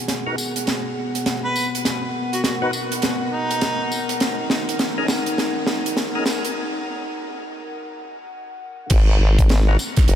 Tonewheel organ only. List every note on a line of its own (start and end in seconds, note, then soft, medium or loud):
0.27 0.36 B3 medium
0.27 0.36 D#4 medium
0.27 0.36 F#4 medium
0.27 0.36 A#4 medium
2.62 2.71 B3 medium
2.62 2.71 D#4 medium
2.62 2.71 F#4 medium
2.62 2.71 B4 loud
4.98 5.07 C#4 medium
4.98 5.07 D#4 medium
4.98 5.07 G#4 medium
4.98 5.07 A#4 medium
6.15 6.24 C#4 medium
6.15 6.25 D#4 medium
6.15 6.24 G#4 medium
6.15 6.24 A#4 medium
9.68 9.77 B3 medium
9.68 9.77 D#4 medium
9.68 9.77 F#4 medium
9.68 9.77 A#4 medium